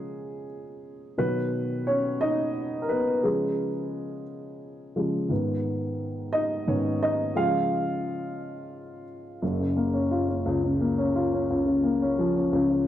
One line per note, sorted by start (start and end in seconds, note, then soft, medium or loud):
0.00 1.14 C#3 soft
0.00 1.15 F3 soft
0.00 1.15 G#3 medium
0.00 0.45 G#4 medium
1.18 3.20 B2 soft
1.18 3.21 D#3 soft
1.18 3.21 F#3 soft
1.18 1.83 B3 medium
1.18 1.83 B4 medium
1.87 2.20 C#4 medium
1.87 2.22 C#5 medium
2.21 2.80 D#4 medium
2.21 2.79 D#5 medium
2.82 2.90 A#4 medium
2.89 3.23 B3 medium
2.89 3.25 B4 medium
3.23 3.70 C#3 soft
3.23 3.70 F3 soft
3.23 4.24 G#3 medium
3.23 4.23 G#4 medium
4.96 5.27 C#3 soft
4.96 5.27 F3 soft
4.96 5.27 G#3 soft
5.29 6.66 G#2 soft
5.29 6.66 D#3 soft
5.29 6.67 B3 medium
6.33 6.66 D#4 medium
6.33 6.68 D#5 medium
6.67 6.98 G#2 soft
6.67 6.99 D#3 soft
6.67 6.99 B3 soft
6.67 7.00 C#4 medium
6.67 7.03 C#5 medium
7.03 7.34 D#4 medium
7.03 7.38 D#5 medium
7.35 7.81 C#3 soft
7.35 7.82 F3 soft
7.35 7.82 G#3 medium
7.35 9.04 F4 medium
7.35 9.04 F5 medium
9.42 11.44 F#1 medium
9.42 11.44 F#2 medium
9.59 10.44 C#3 soft
9.77 10.79 A#3 medium
9.93 10.27 C#4 medium
10.11 11.14 F4 medium
10.28 10.97 C#4 medium
10.46 11.49 C#2 medium
10.46 10.62 C#3 medium
10.63 11.64 C#3 medium
10.80 11.82 A#3 medium
10.98 11.31 C#4 medium
11.15 12.48 F4 medium
11.33 12.00 C#4 medium
11.50 12.51 C#2 medium
11.66 12.51 C#3 medium
11.83 12.85 A#3 medium
12.02 12.34 C#4 medium
12.19 12.87 F3 medium
12.36 12.87 C#4 medium
12.53 12.87 C#2 medium
12.53 12.68 C#3 medium
12.69 12.87 C#3 medium